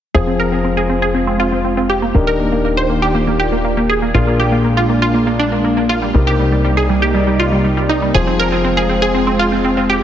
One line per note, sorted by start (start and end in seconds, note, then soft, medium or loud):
0.14 2.12 F1 medium
0.14 2.12 F3 medium
0.14 2.12 G#3 medium
0.14 2.12 C4 medium
0.14 2.13 C4 medium
0.14 2.12 F4 medium
0.14 2.13 F4 medium
0.14 2.12 G#4 medium
0.14 0.21 G#4 medium
0.14 2.11 C5 medium
0.27 0.34 C4 medium
0.40 0.46 A#4 medium
0.52 0.59 C4 medium
0.64 0.71 C4 medium
0.77 0.84 G#4 medium
0.90 0.96 C4 medium
1.02 1.09 G#4 medium
1.15 1.21 C4 medium
1.27 1.34 C4 medium
1.40 1.46 F4 medium
1.52 1.59 C4 medium
1.65 1.71 C4 medium
1.77 1.84 C4 medium
1.90 1.96 G4 medium
2.02 2.09 A#3 medium
2.14 4.12 D#1 medium
2.14 4.12 D#3 medium
2.14 4.13 D#3 medium
2.14 8.11 A#3 medium
2.14 2.21 A#3 medium
2.14 4.12 D4 medium
2.14 4.12 D#4 medium
2.14 4.12 F4 medium
2.14 4.12 G4 medium
2.14 4.13 G4 medium
2.14 4.12 A#4 medium
2.14 4.12 D5 medium
2.27 2.34 A#4 medium
2.40 2.46 A#3 medium
2.52 2.59 A#3 medium
2.65 2.71 A#3 medium
2.77 2.84 C5 medium
2.90 2.96 A#3 medium
3.02 3.09 G4 medium
3.15 3.21 A#3 medium
3.27 3.34 A#3 medium
3.40 3.46 G4 medium
3.52 3.59 A#3 medium
3.64 3.71 A#3 medium
3.77 3.84 A#3 medium
3.89 3.96 G#4 medium
4.02 4.09 A#3 medium
4.14 6.12 A#1 medium
4.14 6.12 A#2 medium
4.14 6.12 G#3 medium
4.14 6.12 D4 medium
4.14 6.12 F4 medium
4.14 4.21 F4 medium
4.14 6.12 G#4 medium
4.14 6.12 A#4 medium
4.27 4.34 A#3 medium
4.40 4.46 G4 medium
4.52 4.59 A#3 medium
4.65 4.71 A#3 medium
4.77 4.84 F4 medium
4.90 4.96 A#3 medium
5.02 5.09 F4 medium
5.14 5.21 A#3 medium
5.27 5.34 A#3 medium
5.39 5.46 D4 medium
5.52 5.59 A#3 medium
5.64 5.71 A#3 medium
5.77 5.84 A#3 medium
5.89 5.96 F4 medium
6.02 6.09 G3 medium
6.14 8.12 C2 medium
6.14 8.12 C3 medium
6.14 8.12 G3 medium
6.14 6.21 G3 medium
6.14 8.12 C4 medium
6.14 8.12 D#4 medium
6.14 8.12 G4 medium
6.14 8.12 A#4 medium
6.14 8.12 D5 medium
6.27 6.34 G4 medium
6.39 6.46 G3 medium
6.52 6.59 G3 medium
6.65 6.71 G3 medium
6.77 6.84 G#4 medium
6.89 6.96 G3 medium
7.02 7.09 G4 medium
7.14 7.21 G3 medium
7.27 7.34 G3 medium
7.39 7.46 F4 medium
7.52 7.59 G3 medium
7.64 7.71 G3 medium
7.77 7.84 G3 medium
7.89 7.96 D#4 medium
8.02 8.09 G3 medium
8.14 10.03 F1 medium
8.14 10.03 F3 medium
8.14 10.03 G#3 medium
8.14 10.03 C4 medium
8.14 10.03 F4 medium
8.14 10.03 G#4 medium
8.14 8.21 G#4 medium
8.14 10.03 C5 medium
8.27 8.34 C4 medium
8.39 8.46 A#4 medium
8.52 8.59 C4 medium
8.64 8.71 C4 medium
8.77 8.84 G#4 medium
8.89 8.96 C4 medium
9.02 9.09 G#4 medium
9.14 9.21 C4 medium
9.27 9.34 C4 medium
9.39 9.46 F4 medium
9.52 9.59 C4 medium
9.64 9.71 C4 medium
9.77 9.84 C4 medium
9.90 9.96 G4 medium